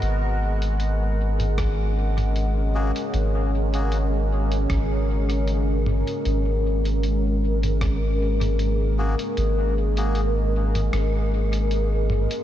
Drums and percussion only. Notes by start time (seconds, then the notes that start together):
0.02 closed hi-hat
0.62 closed hi-hat
0.80 closed hi-hat
1.40 closed hi-hat, mid tom
1.58 kick, cross-stick, closed hi-hat
2.18 closed hi-hat, mid tom
2.36 closed hi-hat
2.96 closed hi-hat
3.14 closed hi-hat
3.74 closed hi-hat
3.92 closed hi-hat
4.52 closed hi-hat
4.70 kick, cross-stick, closed hi-hat
5.30 closed hi-hat
5.48 closed hi-hat
5.86 mid tom
6.07 closed hi-hat
6.25 closed hi-hat
6.85 closed hi-hat
7.03 closed hi-hat
7.63 closed hi-hat, mid tom
7.81 kick, cross-stick, closed hi-hat
8.41 closed hi-hat, mid tom
8.59 closed hi-hat
9.19 closed hi-hat
9.37 closed hi-hat
9.97 closed hi-hat
10.15 closed hi-hat
10.75 closed hi-hat, mid tom
10.93 cross-stick, closed hi-hat
11.53 closed hi-hat
11.71 closed hi-hat
12.10 mid tom
12.31 closed hi-hat